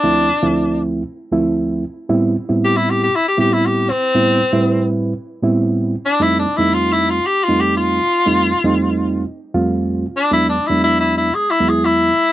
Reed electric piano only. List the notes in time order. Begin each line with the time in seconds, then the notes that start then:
0.03 D2 F3 A3 C4 E4
0.43 D2 F3 A3 C4 E4
1.32 D2 F3 A3 C4 E4
2.09 A2 G3 B3 C4 E4
2.49 A2 G3 B3 C4 E4
3.38 A2 G3 B3 C4 E4
4.15 A2 G3 B3 C4 E4
4.53 A2 G3 C4 E4 B4
5.43 A2 G3 B3 C4 E4
6.20 F2 G3 A3 C4 D#4
6.58 F2 G3 A3 C4 D#4
7.48 F2 G3 A3 C4 D#4
8.26 F2 G3 A3 C4 D#4
8.64 F2 G3 A3 C4 D#4
9.54 F2 G3 A3 C4 F4
10.31 E2 F#3 G#3 B3 D4
10.70 E2 F#3 G#3 B3 D4
11.60 E2 F#3 G#3 B3 E4